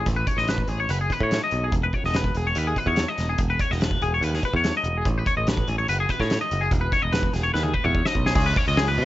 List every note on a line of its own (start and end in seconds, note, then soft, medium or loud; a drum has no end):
0.06 0.24 A1 medium
0.06 kick medium
0.06 closed hi-hat medium
0.16 0.27 B4 medium
0.27 0.38 C#5 medium
0.27 kick medium
0.27 closed hi-hat medium
0.37 0.63 A1 medium
0.37 0.48 D#5 medium
0.37 snare soft
0.48 0.69 B4 medium
0.48 snare medium
0.48 closed hi-hat medium
0.58 kick medium
0.68 0.86 A1 medium
0.68 0.79 G#4 medium
0.68 closed hi-hat medium
0.80 0.90 C#5 medium
0.89 1.07 F#1 medium
0.89 1.01 B4 medium
0.89 closed hi-hat medium
1.01 1.12 G#4 medium
1.10 1.22 B4 medium
1.10 kick medium
1.10 closed hi-hat soft
1.20 1.38 A2 medium
1.20 1.43 C#5 medium
1.20 kick medium
1.31 snare medium
1.31 closed hi-hat medium
1.43 1.63 D#5 medium
1.51 1.69 B1 medium
1.51 closed hi-hat medium
1.64 1.74 G#4 medium
1.72 1.89 E1 loud
1.72 kick loud
1.72 closed hi-hat medium
1.83 1.94 B4 medium
1.93 2.04 C#5 medium
1.93 kick medium
1.93 closed hi-hat medium
2.04 2.30 E1 medium
2.04 2.15 D#5 medium
2.04 snare soft
2.14 2.37 B4 medium
2.14 snare medium
2.14 closed hi-hat medium
2.24 kick medium
2.35 2.52 E1 medium
2.35 2.47 G#4 medium
2.35 closed hi-hat medium
2.47 2.58 C#5 medium
2.55 2.73 D#2 medium
2.55 2.68 B4 medium
2.55 closed hi-hat medium
2.67 2.78 G#4 medium
2.76 2.88 B4 medium
2.76 kick medium
2.76 closed hi-hat soft
2.86 3.04 E2 medium
2.86 3.08 C#5 medium
2.86 kick medium
2.96 snare loud
2.96 closed hi-hat medium
3.08 3.29 D#5 medium
3.18 3.36 E1 medium
3.18 snare soft
3.18 closed hi-hat medium
3.29 3.40 G#4 medium
3.38 3.56 E1 loud
3.38 kick medium
3.38 closed hi-hat medium
3.50 3.60 B4 medium
3.60 3.71 C#5 medium
3.60 kick medium
3.60 closed hi-hat medium
3.71 3.96 E1 medium
3.71 3.81 D#5 medium
3.71 snare soft
3.81 4.02 B4 medium
3.81 snare loud
3.81 closed hi-hat medium
3.91 kick medium
4.01 4.19 E1 medium
4.01 4.12 G#4 medium
4.01 closed hi-hat medium
4.14 4.24 C#5 medium
4.21 4.39 D#2 medium
4.21 4.34 B4 medium
4.21 closed hi-hat medium
4.34 4.44 G#4 medium
4.34 snare soft
4.43 4.54 B4 medium
4.43 kick medium
4.43 closed hi-hat soft
4.53 4.71 E2 loud
4.53 4.76 C#5 medium
4.53 kick medium
4.64 snare loud
4.64 closed hi-hat medium
4.77 4.96 D#5 medium
4.84 5.01 E1 medium
4.84 closed hi-hat medium
4.97 5.07 G#4 medium
5.05 5.23 A1 loud
5.05 kick loud
5.05 closed hi-hat medium
5.18 5.27 B4 medium
5.26 5.37 C#5 medium
5.26 kick medium
5.26 closed hi-hat medium
5.37 5.62 A1 medium
5.37 5.48 D#5 medium
5.47 5.68 B4 medium
5.47 snare loud
5.47 closed hi-hat medium
5.57 kick medium
5.68 5.85 A1 medium
5.68 5.78 G#4 medium
5.68 closed hi-hat medium
5.78 5.89 C#5 medium
5.88 6.06 F#1 medium
5.88 5.99 B4 medium
5.88 closed hi-hat medium
6.00 6.10 G#4 medium
6.09 6.20 B4 medium
6.09 kick medium
6.09 closed hi-hat medium
6.20 6.37 A2 loud
6.20 6.41 C#5 medium
6.20 kick medium
6.20 snare soft
6.30 snare medium
6.30 closed hi-hat medium
6.41 6.61 D#5 medium
6.51 6.68 F#1 medium
6.51 closed hi-hat medium
6.61 6.71 G#4 medium
6.71 6.88 E1 loud
6.71 kick loud
6.71 closed hi-hat medium
6.81 6.92 B4 medium
6.92 7.02 C#5 medium
6.92 kick medium
6.92 closed hi-hat medium
7.02 7.28 E1 medium
7.02 7.13 D#5 medium
7.12 7.33 B4 medium
7.12 snare loud
7.12 closed hi-hat medium
7.23 kick medium
7.33 7.51 E1 medium
7.33 7.44 G#4 medium
7.33 snare soft
7.33 closed hi-hat medium
7.43 7.53 C#5 medium
7.54 7.71 D#2 medium
7.54 7.63 B4 medium
7.54 snare soft
7.63 7.73 G#4 medium
7.63 high tom soft
7.73 7.84 B4 medium
7.73 kick medium
7.84 8.02 E2 loud
7.84 8.05 C#5 medium
7.84 mid tom medium
7.95 kick medium
8.05 8.26 D#5 medium
8.05 snare medium
8.15 8.33 B1 medium
8.15 kick medium
8.26 8.34 G#4 medium
8.26 snare medium
8.35 8.53 C#2 loud
8.35 8.46 G#4 medium
8.35 kick loud
8.35 crash loud
8.46 8.57 B4 medium
8.56 8.67 C#5 medium
8.56 kick loud
8.56 open hi-hat medium
8.68 9.00 C#2 medium
8.68 8.78 D#5 medium
8.76 8.88 G#4 medium
8.76 snare loud
8.76 open hi-hat medium
8.88 9.05 B4 medium
8.98 9.05 C#3 medium
8.98 open hi-hat medium